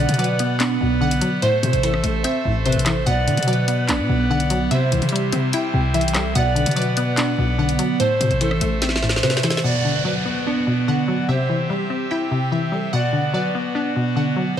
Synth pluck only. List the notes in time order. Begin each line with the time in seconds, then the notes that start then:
Already playing: B2 D3
0.18 F#3
0.40 B3
0.60 D4
0.81 B2
1.01 D3
1.21 F#3
1.42 A2
1.63 C3
1.84 E3
2.04 A3
2.25 C4
2.45 A2
2.66 C3
2.86 E3
3.07 B2
3.27 D3
3.47 F#3
3.68 B3
3.89 D4
4.09 B2
4.30 D3
4.50 F#3
4.71 C3
4.92 E3
5.12 G3
5.33 C4
5.54 E4
5.74 C3
5.94 E3
6.14 G3
6.35 B2
6.55 D3
6.76 F#3
6.97 B3
7.17 D4
7.39 B2
7.58 D3
7.79 F#3
8.00 A2
8.21 C3
8.41 E3
8.61 A3
8.82 C4
9.03 A2
9.24 C3
9.43 E3
9.64 B2
9.85 D3
10.05 F#3
10.25 B3
10.47 D4
10.67 B2
10.88 D3
11.08 F#3
11.28 C3
11.49 E3
11.70 G3
11.90 C4
12.11 E4
12.31 C3
12.52 E3
12.72 G3
12.93 B2
13.13 D3
13.33 F#3
13.55 B3
13.75 D4
13.96 B2
14.16 D3
14.36 F#3